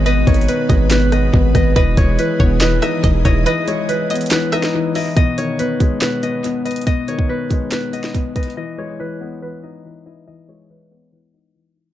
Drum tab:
HH |x-----------x---x---x---x-----------x-----------x-----------x-----------------------x-----------|x-----------x-----------x-----------------------x-----------x-----------x-----------x-----------|x-----------x-----------x-----------x--x--x--x--x-----------x-----------------------o-----------|x-----------x-----------x-----------x-----------x-----------x-----------x-----------x--x--x--x--|
CP |------------------------------------------------x-----------------------------------------------|------------------------------------------------x-----------------------------------------------|------------------------------------------------x-----------------------------------------------|------------------------------------------------x-----------------------------------------------|
SD |------------------------------------------------o-----------r-----------------------r-----------|------------------------------------------------o-----------r-----------------------r-----------|------------------------------------------------o-----------r-----o-----------------------------|------------------------------------------------o-----------------------------------------------|
BD |------------o-----------------------o-----------------------------------o-----------o-----------|o-----------o-----------------------o-----------------------------------o-----------o-----------|------------------------------------------------------------------------------------------------|o-----------------------------------o-----------------------------------------------------------|

HH |x-----------x-----------------------x-----------x-----------x-----------x-----------x---x---x---|------------------------------------------------------------------------------------------------|------------------------------------------------------------------------------------------------|
CP |------------------------------------------------x-----------------------------------------------|------------------------------------------------------------------------------------------------|------------------------------------------------------------------------------------------------|
SD |------------------------------------------------o-----------------o-----------------------------|------------------------------------------------------------------------------------------------|------------------------------------------------------------------------------------------------|
BD |o-----------------o-----------------o-----------------------------------o-----------o-----------|------------------------------------------------------------------------------------------------|------------------------------------------------------------------------------------------------|